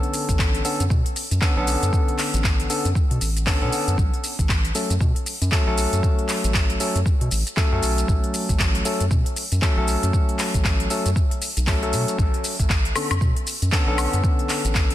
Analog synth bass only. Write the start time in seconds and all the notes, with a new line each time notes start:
0.29 A1
0.80 F#2
0.90 B2
1.31 F#2
1.57 B1
1.83 F#2
2.34 A1
2.85 F#2
3.11 B2
3.21 A1
3.62 B2
3.88 F#2
3.98 B1
4.39 A1
4.90 F#2
5.01 B2
5.42 F#2
5.67 B1
5.93 F#2
6.44 A1
6.95 F#2
7.21 B2
7.31 A1
7.72 F#2
7.83 B1
8.08 B1
8.49 A1
9.01 F#2
9.11 B2
9.52 F#2
9.77 B1
10.03 F#2
10.54 A1
11.06 F#2
11.57 B1
11.93 B2
12.19 B1
12.59 A1
13.11 F#2
13.21 B2
13.62 F#2
13.88 B1
14.13 F#2
14.65 A1